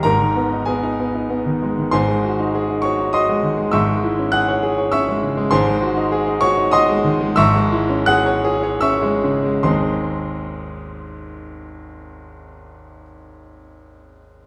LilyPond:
<<
  \new Staff \with { instrumentName = "Grand piano" } { \time 3/4 \key cis \dorian \tempo 4 = 94 <ais' ais''>4 <gis' gis''>4. r8 | <bis' gis'' bis''>4. <cis'' cis'''>8 <dis'' bis'' dis'''>4 | <e'' cis''' e'''>4 <fis'' fis'''>4 <e'' cis''' e'''>4 | <bis' gis'' bis''>4. <cis'' cis'''>8 <dis'' bis'' dis'''>4 |
<e'' cis''' e'''>4 <fis'' fis'''>4 <e'' cis''' e'''>4 | <gis,, dis, gis bis dis' gis' bis''>2.~ | <gis,, dis, gis bis dis' gis' bis''>2. | }
  \new Staff \with { instrumentName = "Grand piano" } { \time 3/4 \key cis \dorian <gis,, gis,>16 dis16 b16 dis'16 b16 dis'16 b16 dis'16 b16 dis16 gis16 dis16 | <gis,, gis,>16 gis16 fis'16 dis'16 gis'16 dis'16 fis'16 dis'16 fis'16 gis16 dis16 gis16 | <gis,, gis,>16 gis16 e'16 cis'16 gis'16 cis''16 gis'16 cis''16 cis'16 gis16 cis16 gis16 | <gis,, gis,>16 gis16 fis'16 dis'16 gis'16 dis'16 fis'16 dis'16 fis'16 gis16 dis16 gis16 |
<gis,, gis,>16 gis16 e'16 cis'16 gis'16 cis''16 gis'16 cis''16 cis'16 gis16 cis16 gis16 | r2. | r2. | }
>>